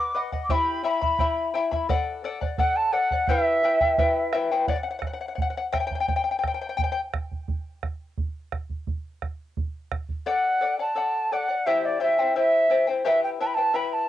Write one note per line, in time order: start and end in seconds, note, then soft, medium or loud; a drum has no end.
0.00 0.13 B4 medium
0.00 0.14 D#5 medium
0.00 0.15 F#5 medium
0.00 0.19 D6 loud
0.14 0.32 B4 medium
0.14 0.32 D#5 medium
0.14 0.31 F#5 medium
0.32 0.50 D#5 soft
0.32 0.50 F#5 medium
0.32 bombo low soft
0.44 0.53 D6 medium
0.49 0.83 E4 medium
0.49 0.85 G4 medium
0.49 0.83 E5 medium
0.49 0.82 G5 medium
0.49 0.84 B5 medium
0.49 0.84 B5 loud
0.49 bombo low medium
0.83 1.01 E4 medium
0.83 1.01 E5 medium
0.83 1.02 G5 medium
0.83 1.50 B5 medium
0.83 1.00 B5 medium
1.01 1.19 E4 soft
1.01 1.19 E5 soft
1.01 1.19 B5 soft
1.01 bombo low medium
1.19 1.54 E4 medium
1.19 1.54 E5 medium
1.19 1.53 G5 medium
1.19 1.54 B5 medium
1.19 bombo low medium
1.54 1.72 E4 medium
1.54 1.71 E5 medium
1.54 1.72 G5 medium
1.54 1.70 B5 medium
1.71 1.90 E4 medium
1.71 1.89 E5 medium
1.71 1.89 B5 medium
1.71 bombo low soft
1.89 2.23 A4 medium
1.89 2.24 D5 medium
1.89 2.24 F#5 loud
1.89 bombo low medium
2.24 2.42 A4 medium
2.24 2.41 D5 medium
2.24 2.40 F#5 medium
2.41 2.58 D5 soft
2.41 2.58 F#5 medium
2.41 bombo low medium
2.58 2.91 A4 medium
2.58 2.92 D5 medium
2.58 2.78 F#5 loud
2.58 2.92 F#5 medium
2.58 bombo low medium
2.76 2.94 A5 loud
2.92 3.11 A4 medium
2.92 3.11 D5 medium
2.92 3.29 F#5 medium
2.92 3.11 F#5 medium
3.11 3.30 D5 soft
3.11 3.29 F#5 medium
3.11 bombo low medium
3.27 3.63 E4 medium
3.27 3.64 G4 medium
3.27 3.64 B4 medium
3.27 4.33 E5 medium
3.27 3.62 E5 medium
3.27 3.63 G5 medium
3.27 bombo low medium
3.63 3.81 E4 medium
3.63 3.80 B4 medium
3.63 3.81 E5 medium
3.63 3.79 G5 medium
3.81 3.97 E4 soft
3.81 3.98 B4 soft
3.81 3.98 G5 soft
3.81 bombo low medium
3.98 4.33 E4 medium
3.98 4.33 B4 medium
3.98 4.31 E5 medium
3.98 4.33 G5 medium
3.98 bombo low medium
4.33 4.51 E4 medium
4.33 4.51 B4 medium
4.33 4.50 E5 medium
4.33 4.50 G5 medium
4.33 bombo rim medium
4.51 4.69 E4 soft
4.51 4.69 B4 medium
4.51 4.68 G5 medium
4.68 4.76 D5 medium
4.68 4.75 F#5 medium
4.68 bombo low medium
4.83 4.89 F#5 medium
4.91 4.98 F#5 medium
4.99 5.06 F#5 medium
4.99 bombo rim medium
4.99 bombo low medium
5.07 5.12 F#5 soft
5.13 5.20 F#5 medium
5.21 5.27 F#5 soft
5.28 5.34 F#5 soft
5.35 5.41 F#5 soft
5.35 bombo low medium
5.42 5.49 F#5 medium
5.50 5.56 F#5 medium
5.57 5.66 F#5 medium
5.73 5.80 E5 medium
5.73 5.79 G5 medium
5.73 bombo rim medium
5.73 bombo low medium
5.80 5.86 G5 medium
5.87 5.94 G5 medium
5.87 bombo low soft
5.95 5.99 G5 medium
6.00 6.07 G5 medium
6.08 6.15 G5 medium
6.08 bombo low medium
6.16 6.23 G5 medium
6.24 6.30 G5 medium
6.31 6.38 G5 medium
6.39 6.46 G5 medium
6.44 6.53 G5 medium
6.44 bombo rim medium
6.44 bombo low medium
6.54 6.60 G5 medium
6.62 6.68 G5 medium
6.69 6.76 G5 medium
6.77 6.83 G5 medium
6.77 bombo low medium
6.84 6.91 G5 medium
6.92 6.99 G5 medium
7.14 bombo rim medium
7.14 bombo low medium
7.32 bombo low soft
7.48 bombo low medium
7.83 bombo rim soft
7.83 bombo low medium
8.18 bombo low medium
8.52 bombo rim medium
8.52 bombo low medium
8.70 bombo low soft
8.87 bombo low medium
9.22 bombo rim soft
9.22 bombo low soft
9.57 bombo low medium
9.92 bombo rim medium
9.92 bombo low medium
10.09 bombo low soft
10.26 10.60 A4 medium
10.26 10.61 D5 medium
10.26 10.75 F#5 medium
10.26 10.61 F#5 medium
10.61 10.78 A4 medium
10.61 10.79 D5 medium
10.61 10.78 F#5 medium
10.79 10.95 D5 soft
10.79 10.96 F#5 soft
10.79 11.34 A5 medium
10.95 11.30 A4 medium
10.95 11.31 D5 medium
10.95 11.32 F#5 medium
11.32 11.49 A4 medium
11.32 11.49 D5 medium
11.32 11.68 F#5 medium
11.32 11.47 F#5 medium
11.49 11.67 D5 soft
11.49 11.66 F#5 medium
11.66 11.99 E4 medium
11.66 12.01 G4 medium
11.66 12.00 C5 medium
11.66 11.87 E5 medium
11.66 11.99 E5 medium
11.66 12.00 G5 medium
11.85 12.01 D5 medium
12.00 12.18 E4 medium
12.00 12.18 C5 medium
12.00 12.18 E5 medium
12.00 12.34 E5 medium
12.00 12.17 G5 medium
12.19 12.35 E4 soft
12.19 12.35 C5 soft
12.19 12.36 G5 soft
12.36 12.69 E4 medium
12.36 12.70 C5 medium
12.36 12.69 E5 medium
12.36 12.85 E5 medium
12.36 12.70 G5 medium
12.70 12.87 E4 medium
12.70 12.87 C5 medium
12.70 12.87 E5 medium
12.70 12.86 G5 medium
12.87 13.04 E4 soft
12.87 13.05 C5 soft
12.87 13.05 G5 medium
13.05 13.39 E4 medium
13.05 13.40 G4 medium
13.05 13.40 B4 medium
13.05 13.39 E5 medium
13.05 13.22 E5 medium
13.05 13.40 G5 medium
13.24 13.30 G5 medium
13.40 13.57 E4 medium
13.40 13.57 B4 medium
13.40 13.57 E5 medium
13.40 13.56 G5 medium
13.40 13.48 A5 medium
13.46 13.55 B5 medium
13.54 13.72 E4 soft
13.54 13.74 B4 soft
13.54 13.74 G5 soft
13.54 13.77 A5 medium
13.74 14.07 E4 medium
13.74 14.08 B4 medium
13.74 14.07 E5 medium
13.74 14.09 G5 medium
13.74 13.87 B5 loud
13.87 13.94 B5 medium
13.93 14.09 A5 medium